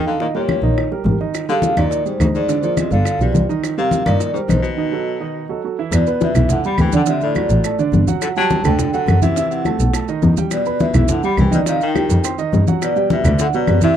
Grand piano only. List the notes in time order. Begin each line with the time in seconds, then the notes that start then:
Already playing: D#3 D#4 D#5
0.21 D#3 D#4 D#5
0.34 G3 G4 A#4
0.63 D#3 D#4 D#5
0.91 G3 G4 A#4
1.06 G3 G4 A#4
1.20 D#3 D#4 D#5
1.49 G3 G4 G#4
1.77 D#3 D#4 D#5
2.06 G3 G4 G#4
2.19 D#3 D#4 D#5
2.49 D3 D4 D5
2.63 F3 F4 G#4
2.91 D3 D4 D5
3.21 F3 F4 G4
3.34 F3 F4 G4
3.49 D#3 D#4 D#5
3.78 G3 G4 A#4
4.06 D#3 D#4 D#5
4.35 G3 G4 A#4
4.49 D#3 D#4 D#5
4.77 D#3 D#4 D#5
4.92 F#3 F#4 A4
5.20 D#3 D#4 D#5
5.49 F#3 F#4 A4
5.64 F#3 F#4 A4
5.79 E3 E4 E5
6.07 B3 B4 B5
6.36 E3 E4 E5
6.65 G3 G4 G5
6.93 D3 D4 D5
7.07 D3 D4 D5
7.36 F#3 F#4 F#5
7.65 A3 A4 A5
7.79 D3 D4 D5
8.07 F#3 F#4 F#5
8.36 G3 G4 G5
8.65 D3 D4 D5
8.94 F#3 F#4 F#5
9.22 E3 E4 E5
9.37 E3 E4 E5
9.66 A3 A4 A5
9.94 A3 A4 A5
10.08 D#3 D#4 D#5
10.38 G3 G4 G5
10.66 B3 B4 B5
10.94 E3 E4 E5
11.23 G3 G4 G5
11.51 D#3 D#4 D#5
11.66 D#3 D#4 D#5
11.95 G3 G4 G5
12.24 C4 C5 C6
12.38 D#3 D#4 D#5
12.67 F#3 F#4 F#5
12.96 G3 G4 G5
13.25 D3 D4 D5
13.54 F#3 F#4 F#5
13.83 E3 E4 E5